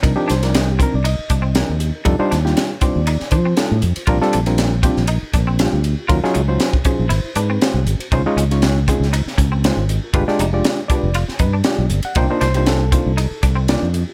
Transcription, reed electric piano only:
\new Staff \with { instrumentName = "Reed electric piano" } { \time 4/4 \key f \mixolydian \tempo 4 = 119 << { r16 bes'16 c''16 d''16 ees''16 g'16 bes'16 d''16 ees''2 | r4. d''4 c''8 r4 | r1 | r4. c''4 b'8 r4 |
r1 | r4. d''4 b'8 r8. fis''16 | g''16 ees''16 c''16 g'16 a'2 r4 | } \\ { <f c' d' ees' bes'>16 <f c' d' ees' g'>16 r16 <f c' d' ees' bes'>8 r16 <f c' d' ees' bes'>16 r16 <ees' bes'>16 r8. <f c' d' ees' bes'>16 r16 <ees' g'>16 <ees' bes'>16 | <g d' ees' f' a'>16 <g d' ees' f' c''>16 r16 <g d' ees' f' g'>8 r16 <g d' ees' f' c''>16 r16 <f' a'>16 r8. <g d' ees' f' a'>16 r16 <f' a'>16 <f' c''>16 | <g c' d' f' bes'>16 <g c' d' f' a'>16 r16 <g c' d' f' bes'>8 r16 <g c' d' f' g'>16 r16 <f' bes'>16 r8. <g c' d' f' g'>16 r16 <f' g'>16 <f' g'>16 | <ges des' ees' f' bes'>16 <ges des' ees' f' aes'>16 r16 <ges des' ees' f' c''>8 r16 <ges des' ees' f' aes'>16 r16 <ges' b'>16 r8. <aes c' e' ges' c''>16 r16 <ges' aes'>16 <ges' c''>16 |
<aes des' ees' f' c''>16 <aes des' ees' f' ees''>16 r16 <aes des' ees' f' des''>8 r16 <aes des' ees' f' aes'>16 r16 <f' c''>16 r8. <aes des' ees' f' c''>16 r16 <f' ees''>16 <f' bes'>16 | <aes d' f' g' b'>16 <aes d' f' g' d''>16 r16 <aes d' f' g' d''>8 r16 <aes d' f' g' b'>16 r16 <g' d''>16 r8. <aes d' f' g' d''>16 r16 <g' d''>16 <g' d''>16 | <bes d' ees' f' c''>16 <bes d' ees' f' c''>16 r16 <bes d' ees' f' c''>8 r16 <bes d' ees' f' c''>16 r16 <f' g'>16 r8. <bes d' ees' f' d''>16 r16 <f' a'>16 <f' g'>16 | } >> }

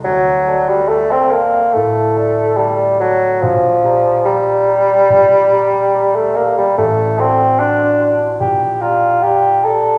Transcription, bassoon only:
\new Staff \with { instrumentName = "Bassoon" } { \time 4/4 \key d \phrygian \tempo 4 = 72 fis8. g16 a16 c'16 bes8 a4 g8 fis8 | f4 g2~ g16 a16 bes16 g16 | a8 c'8 d'8. r16 g'8 f'8 g'8 a'8 | }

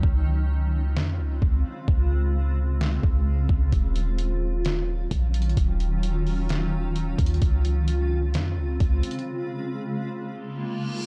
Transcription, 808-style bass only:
\new Staff \with { instrumentName = "808-style bass" } { \clef bass \time 4/4 \key des \major \tempo 4 = 130 des,2 f,8 des,8 des,8 r8 | des,2~ des,8 des,4 des,8 | ees,,2. bes,,4 | ees,,2.~ ees,,8 ees,8 |
des,2 f,8 des,8 des,8 r8 | r1 | }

